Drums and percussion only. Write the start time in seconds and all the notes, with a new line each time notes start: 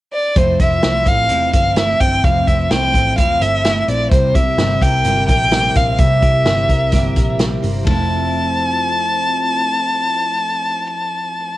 0.36 kick, closed hi-hat
0.59 kick, closed hi-hat
0.82 snare, closed hi-hat
1.06 kick, closed hi-hat
1.29 closed hi-hat
1.53 kick, closed hi-hat
1.76 snare, closed hi-hat
2.01 kick, closed hi-hat
2.24 kick, closed hi-hat
2.48 kick, closed hi-hat
2.71 snare, closed hi-hat
2.94 kick, closed hi-hat
3.18 kick, closed hi-hat
3.41 closed hi-hat
3.65 snare, closed hi-hat
3.88 closed hi-hat
4.11 kick, closed hi-hat
4.35 kick, closed hi-hat
4.58 snare, closed hi-hat
4.82 kick, closed hi-hat
5.04 closed hi-hat
5.29 kick, closed hi-hat
5.51 snare, closed hi-hat
5.75 kick, closed hi-hat
5.98 kick, closed hi-hat
6.22 kick, closed hi-hat
6.45 snare, closed hi-hat
6.69 kick, closed hi-hat
6.92 kick, snare, closed hi-hat
7.16 kick, closed hi-hat
7.39 snare, closed hi-hat
7.63 open hi-hat
7.87 kick, ride bell